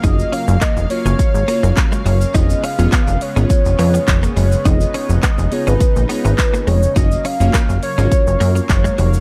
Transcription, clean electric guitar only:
X:1
M:4/4
L:1/16
Q:1/4=104
K:F#
V:1 name="Clean electric guitar"
D z C z A, z2 C z2 A, A, z G, F, z | D z C z B, z2 C z2 B, B, z A, G, z | D z C z B, z2 C z2 B, B, z A, G, z | D z C z A, z2 C z2 A, A, z G, F, z |]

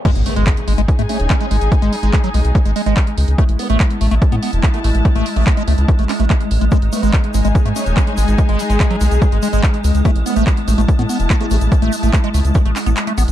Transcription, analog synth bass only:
X:1
M:4/4
L:1/16
Q:1/4=144
K:G#phr
V:1 name="Analog synth bass" clef=bass
z G,,, z G,,, z2 G,,, G,,, z G,, z D,,, z2 G,,, G,,, | z G,,, z G,,, z2 B,,, B,,, z G,,, z G,,, z2 C,, C,, | z A,,, z A,,, z2 A,,, A,,, z A,, z E,,, z2 A,,, A,,, | z A,,, z A,,, z2 C,, C,, z A,,, z A,,, z2 A,,, A,,, |
z G,,, z G,,, z2 G,,, G,,, z G,, z D,,, z2 G,,, G,,, | z G,,, z G,,, z2 B,,, B,,, z G,,, z G,,, z2 C,, C,, | z A,,, z A,,, z2 A,,, A,,, z A,, z E,,, z2 A,,, A,,, | z A,,, z A,,, z2 C,, C,, z A,,, z A,,, z2 A,,, A,,, |]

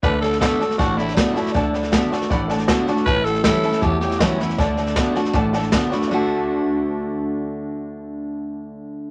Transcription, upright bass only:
X:1
M:4/4
L:1/8
Q:1/4=158
K:D
V:1 name="Upright bass" clef=bass
D,,3 z A,,,3 z | D,,3 z A,,,3 z | A,,,3 z E,,3 z | D,,3 z A,,,3 z |
D,,8- | D,,8 |]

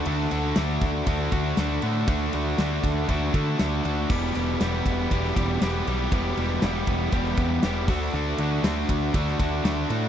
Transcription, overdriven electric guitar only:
X:1
M:4/4
L:1/8
Q:1/4=119
K:Dmix
V:1 name="Overdriven electric guitar"
[D,A,DF] [A,DF] [D,A,DF]2 [D,A,DF] [A,DF] [D,A,DF] [A,DF] | [D,A,DF] [A,DF] [D,A,DF]2 [D,A,DF] [A,DF] [D,A,DF] [A,DF] | [E,,B,,E,G,B,G] [E,G,B,G] [E,G,B,G]2 [E,,B,,E,G,B,G] [E,G,B,G] [E,G,B,G] [E,G,B,G] | [E,,B,,E,G,B,G] [E,G,B,G] [E,G,B,G]2 [E,,B,,E,G,B,G] [E,G,B,G] [E,G,B,G] [D,A,DF] |
[D,A,DF] [A,DF] [D,A,DF]2 [D,A,DF] [A,DF] [D,A,DF] [A,DF] |]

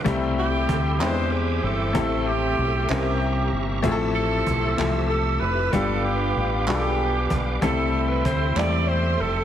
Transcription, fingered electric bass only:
X:1
M:6/8
L:1/8
Q:3/8=63
K:C
V:1 name="Fingered electric bass" clef=bass
C,,2 D,, E,,2 G,,, | A,,,2 B,,, C,,2 G,,, | A,,,2 B,,, C,,2 F,,, | G,,,2 A,,, B,,,2 B,,, |
C,,2 D,, E,,2 F,,, |]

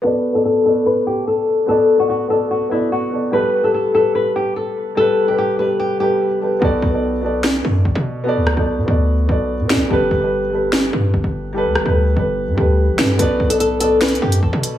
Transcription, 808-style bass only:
X:1
M:4/4
L:1/16
Q:1/4=146
K:Bm
V:1 name="808-style bass" clef=bass
z16 | z16 | z16 | z16 |
B,,,2 B,,,8 F,,2 A,,, B,,3- | B,, D,,2 B,,,2 B,, D,,4 B,,,3 B,,3/2 B,,,3/2 | G,,,2 G,,,8 G,,2 G,,, G,,,3- | G,,, D,, G,,, D,,3 G,,,3 G,, D,,3 A,,, G,,2 |
B,,,2 B,,,8 F,,2 A,,, B,,3 |]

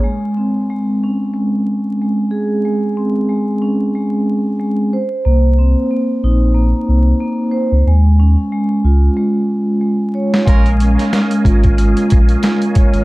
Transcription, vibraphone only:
X:1
M:4/4
L:1/8
Q:"Swing 16ths" 1/4=92
K:Abmix
V:1 name="Vibraphone"
A, C A, D A,2 A, A | A, C A, D A,2 A, c | B, C B, E B,2 B, c | A, D A, F A,2 A, d |
A, D A, F A,2 A, d |]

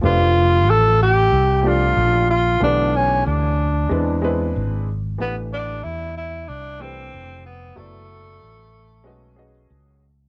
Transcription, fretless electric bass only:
X:1
M:4/4
L:1/8
Q:"Swing 16ths" 1/4=93
K:Flyd
V:1 name="Fretless electric bass" clef=bass
F,,,2 A,,,2 C,,2 ^A,,,2 | B,,,2 D,,2 E,,2 ^G,,,2 | A,,,2 E,,2 C,,2 F,,,2 | ^F,,,2 A,,,2 B,,,2 ^C,,2 |]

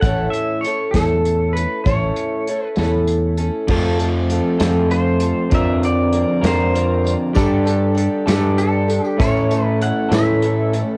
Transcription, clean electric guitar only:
X:1
M:6/8
L:1/8
Q:3/8=65
K:Amix
V:1 name="Clean electric guitar"
z6 | z6 | [=F,A,=C=FA]3 [F,A,CFA]3 | [D,=F,=C=F_B]3 [D,F,CFB]3 |
[G,DGA]3 [G,DGA]3 | [A,,A,CEA]3 [A,,A,CEA]3 |]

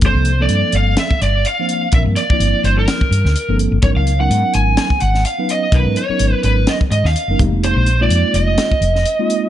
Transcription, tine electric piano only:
X:1
M:4/4
L:1/16
Q:"Swing 16ths" 1/4=126
K:Gphr
V:1 name="Tine electric piano"
[F,B,CD=A]2 z [F,B,CDA]6 z4 [F,B,CDc]2 z | [F,B,CDB]2 z [F,B,CD=E]6 z4 [F,B,CD=A]2 z | [_G,_C_DEB]2 z [G,CDEB]6 z4 [G,CDE_c]2 z | [_G,_C_DEB]2 z [G,CDEB]6 z4 [G,CDEB] [A,B,=CE=G]2- |
[A,B,CEG]2 z [A,B,CEF]6 z4 [A,B,CEF]2 z |]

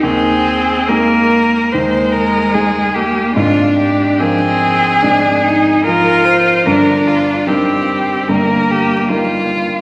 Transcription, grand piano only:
X:1
M:4/4
L:1/8
Q:1/4=73
K:Eb
V:1 name="Grand piano" clef=bass
[E,,E,]2 [A,EA]2 [E,,E,]2 [A,EA]2 | [A,,,A,,]2 [F,FB]2 [A,,,A,,]2 [F,FB]2 | [G,,,G,,]2 [G,EB]2 [G,,,G,,]2 [G,EB]2 |]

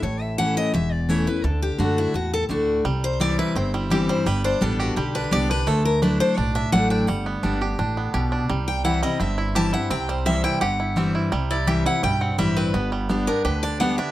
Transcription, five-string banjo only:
X:1
M:4/4
L:1/8
Q:1/4=170
K:Clyd
V:1 name="Five-string banjo"
z8 | z8 | G,2 C E C G, G G, | G, D G, G G, D G D |
A,2 D D D D D D | G, B, D G D B, G D | G,2 E G, C E G E | C G, C E G E C E |
G, E G E G, C G, C | B, G, B, D G D B, D |]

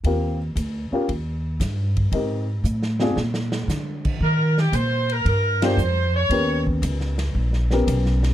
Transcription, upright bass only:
X:1
M:4/4
L:1/8
Q:"Swing" 1/4=115
K:Eb
V:1 name="Upright bass" clef=bass
E,,2 D,, z E,,2 G,,2 | A,,2 =A,,2 B,,2 D,2 | E,2 B,,2 G,,2 F,,2 | E,,2 _D,,2 B,,,2 _C,,2 |]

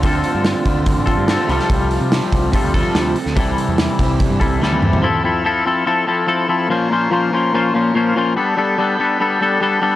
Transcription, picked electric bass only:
X:1
M:4/4
L:1/16
Q:1/4=144
K:F
V:1 name="Picked electric bass" clef=bass
D,,2 z G,,2 z D,,3 A,,,2 G,,2 z C,, z | C,,3 C,2 z C,,2 z D,,2 z D,,2 z D,, | C,,2 z E,,2 z C,,3 G,, C,,2 D,,2 E,,2 | z16 |
z16 | z16 |]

